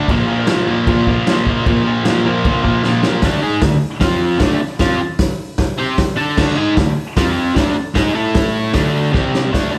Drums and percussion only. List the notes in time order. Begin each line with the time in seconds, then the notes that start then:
0.08 kick, crash
0.47 snare, crash
0.87 kick, crash
1.07 kick
1.27 snare, crash
1.47 kick
1.66 kick, crash
2.05 snare, crash
2.45 kick, crash
2.65 kick
2.83 snare
3.03 snare
3.22 kick, snare, open hi-hat
3.62 kick, snare, open hi-hat
4.01 kick, snare, open hi-hat
4.40 kick, snare, open hi-hat
4.79 kick, snare, open hi-hat
5.19 kick, snare, open hi-hat
5.58 kick, snare, open hi-hat
5.98 kick, snare, open hi-hat
6.37 kick, snare, crash
6.77 kick, snare, open hi-hat
7.17 kick, snare, open hi-hat
7.56 kick, snare, open hi-hat
7.95 kick, snare, open hi-hat
8.35 kick, snare, open hi-hat
8.74 kick, snare, open hi-hat
9.14 kick, snare
9.34 snare
9.54 kick, snare, open hi-hat